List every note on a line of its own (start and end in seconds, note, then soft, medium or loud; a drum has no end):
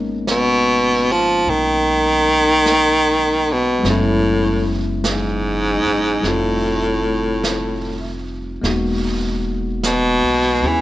0.00 1.42 G#1 medium
0.00 3.78 G#3 medium
0.00 3.84 A#3 soft
0.00 3.83 B3 soft
0.00 3.84 C#4 soft
0.00 3.85 D#4 medium
0.00 3.86 A#4 soft
0.27 1.14 B2 medium
0.27 brush sweep soft
0.27 snare soft
0.27 hi-hat pedal soft
1.12 1.51 F3 medium
1.46 3.80 B1 medium
1.46 3.54 D#3 medium
1.46 brush sweep soft
2.66 brush sweep soft
2.66 snare soft
2.66 hi-hat pedal soft
3.52 3.87 B2 medium
3.79 6.22 F#3 soft
3.79 6.21 G#3 soft
3.84 5.81 F#1 medium
3.84 6.23 B3 soft
3.84 6.25 C#4 soft
3.84 brush sweep soft
3.84 snare soft
3.90 4.85 A2 medium
3.90 6.26 E4 medium
5.04 brush sweep soft
5.04 snare soft
5.04 hi-hat pedal medium
5.08 6.30 G#2 medium
5.85 6.20 F#1 medium
6.22 8.59 F1 medium
6.22 8.63 G3 soft
6.22 8.63 A3 soft
6.22 8.64 C4 soft
6.22 8.64 D#4 soft
6.22 brush sweep soft
6.22 snare soft
6.27 8.28 A2 medium
6.27 8.65 F4 soft
7.44 brush sweep soft
7.44 snare soft
7.44 hi-hat pedal soft
8.62 10.19 E1 medium
8.62 10.81 G#3 soft
8.62 10.81 A#3 soft
8.62 10.60 B3 soft
8.62 10.81 D#4 soft
8.62 brush sweep soft
8.62 snare soft
8.67 10.81 F#4 soft
9.83 10.69 B2 medium
9.83 brush sweep soft
9.83 snare soft
9.83 hi-hat pedal medium
10.22 10.60 B1 soft
10.62 10.81 D#2 medium
10.62 10.81 B3 soft
10.62 10.81 C#4 soft
10.62 10.81 G#4 soft
10.68 10.81 E3 medium